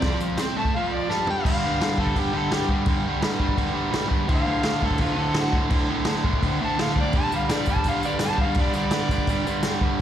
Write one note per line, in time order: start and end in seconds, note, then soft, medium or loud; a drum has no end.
0.00 0.22 D5 loud
0.00 kick loud
0.00 snare loud
0.00 crash medium
0.06 0.40 F2 loud
0.06 0.40 F3 loud
0.21 tambourine medium
0.37 0.57 C3 medium
0.37 0.57 C4 loud
0.37 snare loud
0.37 tambourine loud
0.37 crash medium
0.57 0.74 A2 loud
0.57 0.74 A3 loud
0.57 0.74 A5 loud
0.65 kick medium
0.74 1.09 F2 loud
0.74 1.09 F3 loud
0.74 0.95 F5 loud
0.93 1.13 D5 loud
1.10 1.44 G2 medium
1.10 1.45 G3 loud
1.10 1.28 A5 loud
1.10 snare medium
1.27 1.45 G5 loud
1.27 floor tom loud
1.45 1.65 G2 loud
1.45 1.64 D3 loud
1.45 1.66 G3 loud
1.45 2.03 F5 loud
1.45 kick loud
1.45 crash loud
1.45 crash medium
1.66 1.80 G2 medium
1.66 1.80 D3 medium
1.66 1.82 G3 medium
1.81 1.97 G2 medium
1.81 1.98 D3 loud
1.81 1.99 G3 loud
1.81 snare loud
1.81 crash medium
1.98 2.14 G2 loud
1.98 2.14 D3 loud
1.98 2.16 G3 loud
1.98 2.20 A4 medium
1.98 kick loud
2.07 kick medium
2.15 2.32 G2 medium
2.15 2.32 D3 loud
2.15 2.33 G3 loud
2.15 2.38 G4 medium
2.15 kick loud
2.15 crash medium
2.33 2.50 G2 medium
2.33 2.50 D3 loud
2.33 2.51 G3 loud
2.33 2.54 A4 medium
2.51 2.69 G2 medium
2.51 2.70 D3 medium
2.51 2.70 G3 loud
2.51 2.70 G4 loud
2.51 snare loud
2.51 crash medium
2.69 2.86 G2 medium
2.69 2.88 D3 loud
2.69 2.87 G3 loud
2.69 kick medium
2.86 3.06 G2 loud
2.86 3.06 D3 loud
2.86 3.07 G3 loud
2.86 kick loud
2.86 crash medium
3.07 3.20 G2 medium
3.07 3.21 D3 medium
3.07 3.22 G3 loud
3.21 3.40 G2 medium
3.21 3.40 D3 loud
3.21 3.40 G3 loud
3.21 snare loud
3.21 crash medium
3.40 3.56 G2 medium
3.40 3.56 D3 loud
3.40 3.57 G3 loud
3.40 kick medium
3.49 kick medium
3.57 3.73 G2 loud
3.57 3.74 D3 medium
3.57 3.74 G3 medium
3.57 kick loud
3.57 crash medium
3.74 3.91 G2 loud
3.74 3.91 D3 loud
3.74 3.91 G3 loud
3.92 4.06 G2 medium
3.92 4.08 D3 medium
3.92 4.08 G3 loud
3.92 snare loud
3.92 crash medium
4.08 4.26 G2 medium
4.08 4.27 D3 loud
4.08 4.27 G3 loud
4.08 kick medium
4.28 4.44 D2 loud
4.28 4.45 A2 loud
4.28 4.47 D3 loud
4.28 kick loud
4.28 crash medium
4.34 4.86 F5 loud
4.45 4.63 D2 medium
4.45 4.63 A2 loud
4.45 4.65 D3 loud
4.63 4.81 D2 loud
4.63 4.81 A2 loud
4.63 4.82 D3 loud
4.63 snare loud
4.63 crash medium
4.81 4.98 D2 loud
4.81 4.98 A2 loud
4.81 4.99 D3 loud
4.81 5.00 A4 loud
4.81 kick medium
4.91 kick medium
4.98 5.14 D2 loud
4.98 5.15 A2 medium
4.98 5.16 D3 loud
4.98 5.20 F4 medium
4.98 kick loud
4.98 crash medium
5.15 5.32 D2 loud
5.15 5.33 A2 loud
5.15 5.33 D3 loud
5.15 5.42 A4 medium
5.33 5.51 D2 medium
5.33 5.51 A2 medium
5.33 5.51 D3 medium
5.33 snare loud
5.33 crash medium
5.40 5.56 F#4 loud
5.52 5.68 D2 loud
5.52 5.68 A2 loud
5.52 5.69 D3 loud
5.52 kick medium
5.69 5.87 D2 loud
5.69 5.89 A2 loud
5.69 5.89 D3 loud
5.69 kick loud
5.69 crash medium
5.88 6.05 D2 medium
5.88 6.05 A2 medium
5.88 6.06 D3 medium
6.05 6.22 D2 medium
6.05 6.23 A2 medium
6.05 6.23 D3 loud
6.05 snare loud
6.05 crash medium
6.23 6.40 D2 medium
6.23 6.42 A2 medium
6.23 6.43 D3 loud
6.23 kick loud
6.33 kick medium
6.42 6.59 D2 loud
6.42 6.60 A2 medium
6.42 6.60 D3 loud
6.42 kick loud
6.42 crash medium
6.60 6.76 D2 loud
6.60 6.77 A2 loud
6.60 6.77 D3 loud
6.60 6.79 A5 loud
6.77 6.95 D2 medium
6.77 6.97 A2 medium
6.77 6.96 D3 loud
6.77 6.97 F5 medium
6.77 snare loud
6.77 crash medium
6.96 7.13 D2 loud
6.96 7.14 A2 loud
6.96 7.14 D3 loud
6.96 7.16 D5 loud
6.96 kick medium
7.13 7.33 G2 loud
7.13 7.33 D3 loud
7.13 7.34 G3 loud
7.13 kick loud
7.13 crash medium
7.18 7.33 A5 loud
7.32 7.50 G2 medium
7.32 7.50 D3 loud
7.32 7.51 G3 medium
7.32 7.50 F5 loud
7.32 tambourine medium
7.49 7.68 G2 medium
7.49 7.68 D3 loud
7.49 7.70 G3 loud
7.49 7.67 D5 medium
7.49 snare loud
7.49 tambourine loud
7.49 crash medium
7.66 7.85 G2 loud
7.66 7.86 D3 loud
7.66 kick medium
7.66 tambourine medium
7.70 7.87 G3 loud
7.70 7.87 A5 loud
7.76 kick medium
7.84 8.03 G2 loud
7.84 8.05 D3 loud
7.84 kick loud
7.84 tambourine medium
7.84 crash medium
7.88 8.05 G3 loud
7.88 8.07 F5 loud
8.03 8.20 G2 medium
8.03 8.22 D3 loud
8.03 8.22 G3 loud
8.03 8.22 D5 medium
8.03 tambourine medium
8.19 8.41 G2 medium
8.19 8.41 D3 medium
8.19 8.41 G3 medium
8.19 snare loud
8.19 tambourine loud
8.19 crash medium
8.24 8.40 A5 loud
8.38 8.61 F5 loud
8.38 kick medium
8.42 8.57 G2 medium
8.42 8.58 D3 loud
8.42 8.59 G3 loud
8.54 8.74 G2 loud
8.54 kick loud
8.54 crash medium
8.59 8.74 D3 loud
8.59 8.75 G3 loud
8.59 8.74 D5 loud
8.74 8.91 G2 medium
8.74 8.92 D3 medium
8.74 8.93 G3 medium
8.74 9.79 D5 loud
8.74 tambourine medium
8.91 9.11 G2 medium
8.91 9.11 D3 loud
8.91 9.12 G3 loud
8.91 snare loud
8.91 tambourine medium
8.91 crash medium
9.09 9.28 G2 medium
9.09 9.28 D3 loud
9.09 kick medium
9.09 tambourine medium
9.13 9.29 G3 loud
9.18 kick medium
9.27 9.45 G2 medium
9.27 9.46 D3 loud
9.27 9.46 G3 loud
9.27 kick loud
9.27 tambourine medium
9.27 crash medium
9.46 9.64 G2 loud
9.46 9.65 D3 loud
9.46 9.65 G3 loud
9.46 tambourine medium
9.63 9.81 G2 loud
9.63 9.82 D3 medium
9.63 9.82 G3 loud
9.63 snare loud
9.63 tambourine loud
9.63 crash medium
9.81 9.99 G2 loud
9.81 9.99 D3 loud
9.81 10.00 G3 loud
9.81 kick medium